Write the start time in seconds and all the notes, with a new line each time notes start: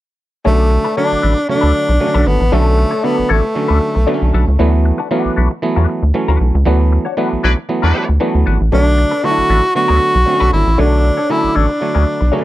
0.45 B1 D3 F#3 A3 C#4 D4 A4 B4
0.59 muted clean electric guitar stroke
0.70 muted clean electric guitar stroke
0.84 D4 A4 B4
0.97 D3 F#3 A3 D4 A4 B4 C#5
1.10 A1, muted clean electric guitar stroke
1.22 A1 D4 A4 B4
1.36 muted clean electric guitar stroke
1.48 C#3 F#3 A3 D4 C#5, muted clean electric guitar stroke
1.55 D3
1.61 D2 D4 A4 B4
1.89 B1, muted clean electric guitar stroke
2.00 C#3 F#3 A3 C#4, muted clean electric guitar stroke
2.06 D3
2.14 B1 D4 A4 B4
2.26 G#1 B3, muted clean electric guitar stroke
2.40 A1, muted clean electric guitar stroke
2.52 B1 D3 F#3 A3 C#4 D4 A4 B4
2.65 muted clean electric guitar stroke
2.78 muted clean electric guitar stroke
2.91 D4 A4 C#5
3.03 D3 F#3 A3 B3 D4 A4 B4
3.17 A1, muted clean electric guitar stroke
3.29 A1 A3 D4 A4 C#5
3.43 muted clean electric guitar stroke
3.55 D3 F#3 A3 C#4, muted clean electric guitar stroke
3.68 D2 D4 A4 B4
3.95 B1, muted clean electric guitar stroke
4.07 D3 F#3 A3 B3 D4 A4 B4
4.14 C#4
4.22 B1
4.33 B1 D4 A4 B4
4.48 C#2
4.59 D2 E3 F#3 A3 B3 D4 F#4 B4
4.73 muted clean electric guitar stroke
4.85 muted clean electric guitar stroke
4.98 D4 F#4 B4
5.11 E3 F#3 A3 B3 D4 F#4 B4
5.25 B1, muted clean electric guitar stroke
5.36 B1 D4 F#4 B4
5.51 muted clean electric guitar stroke
5.62 E3 F#3 A3 B3, muted clean electric guitar stroke
5.76 E2 D4 F#4 B4
5.89 muted clean electric guitar stroke
6.03 D2, muted clean electric guitar stroke
6.14 E3 F#3 A3 C#4, muted clean electric guitar stroke
6.28 D2 D4 F#4 B4
6.41 B1
6.55 C#2, muted clean electric guitar stroke
6.65 D2 E3 F#3 A3 B3 D4 F#4 B4
6.80 muted clean electric guitar stroke
6.92 muted clean electric guitar stroke
7.05 D4 F#4 C#5
7.17 E3 F#3 A3 B3 D4 F#4 B4
7.33 B1
7.43 B1 F#3 D4 F#4 B4 C#5
7.56 muted clean electric guitar stroke
7.69 E3 F#3 A3 B3, muted clean electric guitar stroke
7.82 E2 F#3 D4 F#4 B4
8.09 D2, muted clean electric guitar stroke
8.20 E3 F#3 A3 B3 D4 F#4 B4
8.34 D2, muted clean electric guitar stroke
8.46 G#1 D4 F#4 B4
8.61 A1, muted clean electric guitar stroke
8.72 B1 D3 F#3 A3 C4 D4 A4 B4
8.79 C#5
8.85 muted clean electric guitar stroke
8.98 muted clean electric guitar stroke
9.11 D4 A4 B4
9.23 D3 F#3 A3 D4 F#4 A4 B4
9.31 E4
9.37 A1, muted clean electric guitar stroke
9.49 A1 D4 A4 B4
9.75 D3 F#3 A3 B3 F#4, muted clean electric guitar stroke
9.88 D2 D4 A4 B4
10.14 B1, muted clean electric guitar stroke
10.25 D3 F#3 A3 C4, muted clean electric guitar stroke
10.34 C#4
10.40 B1 D4 A4 B4
10.53 G#1 E4
10.66 A1, muted clean electric guitar stroke
10.78 B1 D3 F#3 A3 D4 A4 B4 C#5
10.92 muted clean electric guitar stroke
11.04 muted clean electric guitar stroke
11.17 D4 A4 C#5
11.29 D3 F#3 A3 C#4 D4 E4 A4 B4
11.43 A1, muted clean electric guitar stroke
11.55 A1 D4 A4 C#5
11.69 muted clean electric guitar stroke
11.80 D3 F#3 A3 C#5, muted clean electric guitar stroke
11.94 D2 D4 A4 B4
12.21 B1, muted clean electric guitar stroke
12.32 C#3 F#3 A3 C#4 D4 A4 B4
12.39 D3